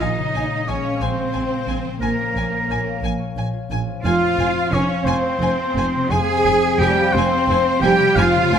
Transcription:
Already playing: A#3 A#4 A#5
0.00 A#1 A#2 D#4 D#5 G#5
0.18 C#3
0.34 A#1 F4 G#5
0.51 G#3
0.68 A#1 C#4 C#5 G#5
0.84 F5
1.01 A#1 C4 C5 G#5
1.33 A#1 G#5
1.51 F4
1.68 A#1 G#5
1.85 F3
2.01 A#1 A#2 A#3 A#4 G#5
2.18 C#4
2.35 A#1 F4 G#5
2.69 A#1 C#5 G#5
2.86 F5
3.02 A#1 G#5
3.19 C#5
3.36 A#1 G#5
3.53 F4
3.70 A#1 C#4 G#5
3.87 F3
4.04 F1 F2 F4 F5 G#5
4.38 F1 G#5
4.70 F1 C#4 C#5 G#5 C6
4.87 F5
5.05 F1 C4 C5 G#5
5.22 C5
5.40 F1 G#5
5.57 F4
5.75 F1 C4 G#5
5.95 C3
6.11 F1 F2 G#4 G#5
6.29 C4
6.46 F1 F4 G#5
6.79 F1 G3 G4 C5 G5 G#5
6.98 F5
7.13 F1 C4 C5
7.17 G#5
7.32 C5
7.48 F1 G#5
7.81 F1 G3 C4 G4 G5 G#5
7.99 C3
8.15 F1 F2 F4 F5 G#5
8.35 C#3
8.52 F1 F4 G#5

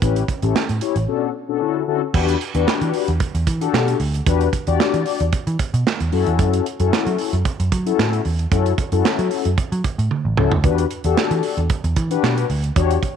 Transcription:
0.02 A1 C#4 E4 G4 B4, kick, closed hi-hat
0.16 closed hi-hat
0.28 kick, closed hi-hat
0.42 A1 C#4 E4 G4 A4, closed hi-hat
0.55 muted picked electric bass stroke, snare, clap
0.69 A2, closed hi-hat
0.81 C#4 E4 G4 C#5, closed hi-hat
0.96 A1, closed hi-hat
1.08 B2 C#4 D4 F#4 A4
1.48 B2 C#4 D4 F#4 A4
1.60 D3 C#4 E4 F#4 A4
1.87 D3 C#4 E4 F#4 A4
2.14 E2 D4 F#4 G4 B4, kick, crash
2.29 closed hi-hat
2.41 closed hi-hat
2.54 E2 D4 F#4 G4 B4, closed hi-hat
2.67 muted picked electric bass stroke, snare, clap
2.81 E3, closed hi-hat
2.94 open hi-hat
3.08 E2, closed hi-hat
3.20 kick, closed hi-hat
3.35 E2, closed hi-hat
3.47 E3, kick, closed hi-hat
3.61 D4 F#4 G4 A4, closed hi-hat
3.74 B2, snare, clap
3.88 closed hi-hat
4.00 D2, open hi-hat
4.14 closed hi-hat
4.26 E2 D4 F#4 G4 B4, kick, closed hi-hat
4.41 closed hi-hat
4.53 kick, closed hi-hat
4.67 E2 D4 F#4 G4 D5, closed hi-hat
4.80 muted picked electric bass stroke, snare, clap
4.94 E3, closed hi-hat
5.06 open hi-hat
5.20 E2, closed hi-hat
5.33 muted picked electric bass stroke, kick, closed hi-hat
5.47 E3, closed hi-hat
5.59 kick, closed hi-hat
5.74 B2, closed hi-hat
5.87 snare, clap
6.00 E2, closed hi-hat
6.12 F#2 C#4 E4 F#4 A4, open hi-hat
6.26 E2, closed hi-hat
6.39 F#2, kick, closed hi-hat
6.53 closed hi-hat
6.66 closed hi-hat
6.79 F#2 C#4 E4 F#4 A4, closed hi-hat
6.93 snare, clap
7.06 F#3, closed hi-hat
7.18 open hi-hat
7.33 F#2, closed hi-hat
7.45 kick, closed hi-hat
7.60 F#2, closed hi-hat
7.72 F#3, kick, closed hi-hat
7.86 C#4 E4 F#4 A4, closed hi-hat
7.99 A2, snare, clap
8.13 closed hi-hat
8.25 E2, open hi-hat
8.39 closed hi-hat
8.51 F#2 C#4 E4 F#4 A4, kick, closed hi-hat
8.66 closed hi-hat
8.78 kick, closed hi-hat
8.92 F#2 C#4 E4 F#4 A4, closed hi-hat
9.05 muted picked electric bass stroke, snare, clap
9.19 F#3, closed hi-hat
9.31 open hi-hat
9.45 F#2, closed hi-hat
9.58 muted picked electric bass stroke, kick, closed hi-hat
9.72 F#3, closed hi-hat
9.84 kick, closed hi-hat
9.98 A2, closed hi-hat
10.11 high tom
10.25 A1
10.37 C#2 C#4 E4 F#4 A4, mid tom
10.52 D2, floor tom
10.64 E2 D4 F#4 G4 B4, kick, closed hi-hat
10.78 closed hi-hat
10.91 closed hi-hat
11.04 E2 D4 F#4 G4 A4, closed hi-hat
11.17 muted picked electric bass stroke, snare, clap
11.31 E3, closed hi-hat
11.43 open hi-hat
11.57 E2, closed hi-hat
11.70 kick, closed hi-hat
11.84 E2, closed hi-hat
11.96 E3, kick, closed hi-hat
12.10 D4 F#4 G4 B4, closed hi-hat
12.23 B2, snare, clap
12.38 closed hi-hat
12.50 D2, open hi-hat
12.64 closed hi-hat
12.76 E2 D4 F#4 G4 C#5, kick, closed hi-hat
12.91 closed hi-hat
13.03 kick, closed hi-hat

